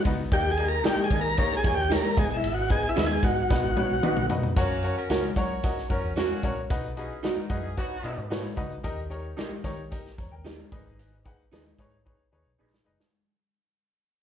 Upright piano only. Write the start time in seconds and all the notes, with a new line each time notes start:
0.06 B3 D#4 F#4 B4 D#5
0.32 D#3 A#3 D#4 G4 A#4 D#5
0.58 A#3 D#4 G4 A#4 D#5
0.85 A#3 D#4 G4 A#4 D#5
1.12 A#3 D#4 G4 A#4 D#5
1.37 A#3 D#4 G4 A#4 C#5
1.64 A#3 D#4 G4 A#4 C#5
1.91 A#3 D#4 G4 A#4 C#5
2.17 G#2 B3 D#4 G#4 B4 D#5
2.70 B3 D#4 G#4 B4 D#5
2.97 B3 D#4 G#4 B4 D#5
3.23 B3 D#4 G#4 B4 D#5
3.50 B2 B3 D#4 F#4 B4 D#5
3.76 B3 D#4 F#4 B4 C#5
4.03 B3 D#4 F#4 B4 D#5
4.30 B3 D#4 F#4 B4 D#5
4.56 C#4 F#4 A#4 C#5
4.83 C#4 F#4 A#4 C#5
5.10 C#4 F#4 A#4 C#5
5.36 C#4 F#4 A#4 C#5
5.63 C#4 F#4 A#4 D#5
5.89 C#4 F#4 A#4 C#5
6.17 C#4 F#4 A#4 C#5
6.43 C#4 F#4 A#4 C#5
6.70 B2 D#4 F#4 B4 D#5
6.97 D#4 F#4 B4 D#5
7.24 D#4 F#4 B4 D#5
7.49 D#4 F#4 B4 D#5
7.77 D#4 F#4 B4 C#5
8.03 D#4 F#4 B4 D#5
8.30 D#4 F#4 B4 C#5
8.56 D#4 F#4 B4 D#5
8.83 D#3 D#4 G4 A#4 D#5
9.10 D#4 G4 A#4 C#5
9.36 D#4 G4 A#4 D#5
9.64 D#4 G4 A#4 C#5
9.91 D#4 G4 A#4 D#5
10.18 C#5 A#5
10.31 A#4 G5
10.45 G4 D#5
10.58 C#4 A#4
10.72 G#2 D#4 G#4 B4 D#5
11.24 D#4 G#4 B4 F#5
11.52 D#4 G#4 B4 D#5
11.79 D#4 G#4 B4 C#5
12.05 D#4 G#4 B4 C#5
12.32 D#4 G#4 B4 C#5
12.59 D#4 G#4 B4 D#5
12.85 D#4 G#4 B4 D#5